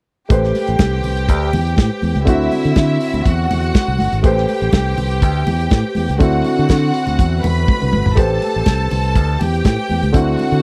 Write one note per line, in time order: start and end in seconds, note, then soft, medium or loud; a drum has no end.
0.29 0.51 A1 medium
0.29 2.22 A3 medium
0.29 2.23 G4 medium
0.29 2.23 B4 medium
0.29 2.24 C5 medium
0.29 2.23 G5 medium
0.29 kick loud
0.29 closed hi-hat medium
0.29 muted conga soft
0.44 snare soft
0.55 open hi-hat medium
0.55 muted conga soft
0.67 0.78 A1 medium
0.67 closed hi-hat soft
0.79 1.00 C2 medium
0.79 kick loud
0.79 snare loud
0.79 closed hi-hat medium
0.79 high conga medium
1.03 1.29 C2 medium
1.03 open hi-hat medium
1.03 low conga medium
1.17 closed hi-hat soft
1.29 1.49 D2 medium
1.29 kick loud
1.29 closed hi-hat medium
1.29 muted conga soft
1.53 1.74 E2 medium
1.53 open hi-hat medium
1.53 muted conga medium
1.53 low conga medium
1.67 closed hi-hat soft
1.77 1.89 A2 medium
1.77 kick loud
1.77 snare loud
1.77 closed hi-hat medium
1.77 high conga medium
2.02 2.14 E2 medium
2.02 open hi-hat medium
2.02 high conga medium
2.16 2.25 C#2 medium
2.16 closed hi-hat soft
2.16 high conga medium
2.25 2.48 D2 medium
2.25 4.19 D3 medium
2.25 4.19 C4 medium
2.25 4.20 E4 medium
2.25 3.24 E4 medium
2.25 4.20 F#4 medium
2.25 3.23 E5 medium
2.25 kick loud
2.25 closed hi-hat medium
2.52 open hi-hat medium
2.52 muted conga soft
2.64 2.75 D3 medium
2.64 closed hi-hat soft
2.76 2.97 D3 loud
2.76 kick loud
2.76 snare loud
2.76 closed hi-hat medium
2.76 high conga medium
3.00 open hi-hat medium
3.14 3.23 D2 medium
3.14 closed hi-hat soft
3.14 low conga medium
3.25 3.46 E2 medium
3.25 4.22 F#4 medium
3.25 4.22 F#5 medium
3.25 kick loud
3.25 closed hi-hat medium
3.25 muted conga soft
3.51 3.71 E2 medium
3.51 open hi-hat medium
3.51 muted conga medium
3.51 low conga medium
3.64 closed hi-hat soft
3.74 kick medium
3.74 snare loud
3.74 closed hi-hat medium
3.74 high conga medium
3.88 3.97 C2 medium
3.99 4.10 G1 medium
3.99 open hi-hat medium
3.99 high conga medium
4.12 4.22 G#1 medium
4.12 closed hi-hat soft
4.12 high conga soft
4.23 4.44 A1 medium
4.23 6.16 A3 medium
4.23 6.16 G4 medium
4.23 6.17 G4 medium
4.23 6.17 B4 medium
4.23 6.17 C5 medium
4.23 6.17 G5 medium
4.23 kick loud
4.23 closed hi-hat medium
4.37 snare soft
4.48 open hi-hat medium
4.48 muted conga soft
4.61 4.71 A1 medium
4.61 closed hi-hat soft
4.73 4.94 C2 medium
4.73 kick loud
4.73 snare loud
4.73 closed hi-hat medium
4.73 high conga medium
4.97 5.23 C2 medium
4.97 open hi-hat medium
4.97 low conga medium
5.11 closed hi-hat soft
5.22 5.43 D2 medium
5.22 kick medium
5.22 closed hi-hat medium
5.22 muted conga soft
5.47 5.67 E2 medium
5.47 open hi-hat medium
5.47 muted conga medium
5.47 low conga medium
5.60 closed hi-hat soft
5.71 5.82 A2 medium
5.71 kick loud
5.71 snare loud
5.71 closed hi-hat medium
5.71 high conga medium
5.95 6.07 E2 medium
5.95 open hi-hat medium
5.95 high conga medium
6.08 6.19 C#2 medium
6.08 closed hi-hat soft
6.08 high conga medium
6.19 6.41 D2 medium
6.19 8.12 D3 medium
6.19 8.13 C4 medium
6.19 8.13 E4 medium
6.19 7.41 F#4 medium
6.19 8.14 F#4 medium
6.19 7.41 F#5 medium
6.19 kick loud
6.19 closed hi-hat medium
6.19 muted conga soft
6.45 open hi-hat medium
6.45 muted conga soft
6.58 6.68 D3 medium
6.58 closed hi-hat soft
6.69 6.90 D3 loud
6.69 kick medium
6.69 snare loud
6.69 closed hi-hat medium
6.69 high conga medium
6.94 open hi-hat medium
7.07 7.17 D2 medium
7.07 closed hi-hat soft
7.07 low conga medium
7.19 7.40 E2 medium
7.19 kick loud
7.19 closed hi-hat medium
7.19 muted conga soft
7.44 7.64 E2 medium
7.44 8.16 B4 medium
7.44 8.16 B5 medium
7.44 open hi-hat medium
7.44 muted conga medium
7.44 low conga medium
7.57 closed hi-hat soft
7.68 kick loud
7.68 high tom soft
7.68 high conga medium
7.82 7.92 C2 medium
7.82 mid tom medium
7.93 8.04 G1 medium
7.93 mid tom medium
7.93 high conga medium
8.06 8.16 G#1 medium
8.06 floor tom medium
8.06 high conga medium
8.15 8.38 A1 medium
8.15 10.09 A3 medium
8.15 10.10 G4 medium
8.15 9.38 A4 medium
8.15 10.10 B4 medium
8.15 10.11 C5 medium
8.15 9.38 A5 medium
8.15 kick loud
8.15 closed hi-hat medium
8.15 muted conga soft
8.42 open hi-hat medium
8.42 muted conga soft
8.54 8.65 A1 medium
8.54 closed hi-hat soft
8.66 8.87 C2 loud
8.66 kick loud
8.66 snare medium
8.66 closed hi-hat medium
8.66 high conga medium
8.90 9.16 C2 medium
8.90 open hi-hat medium
8.90 low conga medium
9.04 closed hi-hat soft
9.15 9.36 D2 medium
9.15 kick loud
9.15 closed hi-hat medium
9.15 muted conga soft
9.40 9.61 E2 medium
9.40 10.13 G4 medium
9.40 10.13 G5 medium
9.40 open hi-hat medium
9.40 muted conga medium
9.40 low conga medium
9.54 closed hi-hat soft
9.64 9.76 A2 medium
9.64 kick loud
9.64 snare loud
9.64 closed hi-hat medium
9.64 high conga medium
9.89 10.01 E2 medium
9.89 open hi-hat medium
9.89 high conga medium
10.03 10.12 C#2 medium
10.03 closed hi-hat soft
10.03 high conga medium
10.13 10.35 D2 medium
10.13 10.62 D3 medium
10.13 10.62 C4 medium
10.13 10.62 E4 medium
10.13 10.62 F#4 medium
10.13 10.62 F#5 medium
10.13 kick loud
10.13 closed hi-hat medium
10.13 muted conga soft
10.39 open hi-hat medium
10.39 muted conga soft
10.51 10.61 D3 medium
10.51 closed hi-hat soft